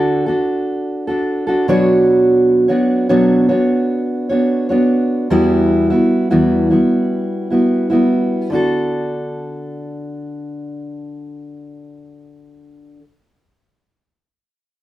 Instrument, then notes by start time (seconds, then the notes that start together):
steel-string acoustic guitar
Already playing: D3 D4 F#4 A4
0.26 D4 F#4 A4
1.07 D4 F#4 A4
1.47 D4 F#4 A4
1.68 B2 F#3 B3 D4 F#4 C#5
2.68 B3 D4 F#4 C#5
3.09 B2 F#3 B3 D4 F#4 C#5
3.49 B3 D4 F#4 C#5
4.29 B3 D4 F#4 C#5
4.69 B3 D4 F#4 C#5
5.30 E2 E3 G3 B3 E4 F#4
5.90 G3 B3 E4 F#4
6.30 E2 E3 G3 B3 E4 F#4
6.70 G3 B3 E4 F#4
7.50 G3 B3 E4 F#4
7.90 G3 B3 E4 F#4
8.50 D3 D4 F#4
8.55 A4